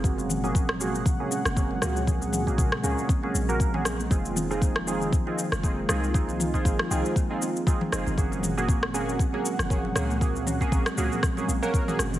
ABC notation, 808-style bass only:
X:1
M:4/4
L:1/16
Q:"Swing 16ths" 1/4=118
K:Gblyd
V:1 name="808-style bass" clef=bass
G,,,8 z3 G,,,3 D,,2- | D,,4 B,,, z D,, z3 B,,,6 | F,,,8 z3 F,,,3 C,,2- | C,,4 A,,, z C,, z6 z F,,, F,,, |
G,,,8 z3 G,,,3 D,,2- | D,,4 B,,, z D,, z3 B,,, z3 G,,,2 |]